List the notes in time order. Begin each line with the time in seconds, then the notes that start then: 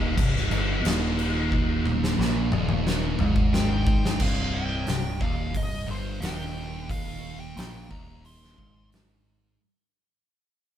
Already playing: D#1 D#2
0.17 C1 C2, kick, crash
0.37 snare
0.51 G1 G2, crash
0.84 D#1 D#2, snare, crash
1.19 crash
1.52 kick
1.86 high tom
2.04 snare
2.18 A#1 A#2, snare
2.52 D#1 D#2, mid tom
2.69 mid tom
2.87 snare
3.19 G#1 G#2, mid tom
3.36 kick
3.54 G5, snare
3.87 kick
4.05 snare
4.20 C1 C2 F5, kick, crash
4.55 G5
4.87 C1 C2, snare, open hi-hat
5.20 D#1 D#2 F5, kick
5.54 C1 C2 D#5, kick, open hi-hat
5.88 G1 G2 C5
6.20 D#1 D#2 G5, snare, open hi-hat
6.90 F5, kick, open hi-hat
7.40 G5
7.56 A#1 A#2, snare, open hi-hat
7.89 D#1 D#2 A#5, kick
8.25 C6, open hi-hat
8.43 snare
8.58 G#1 G#2, kick
8.92 snare, open hi-hat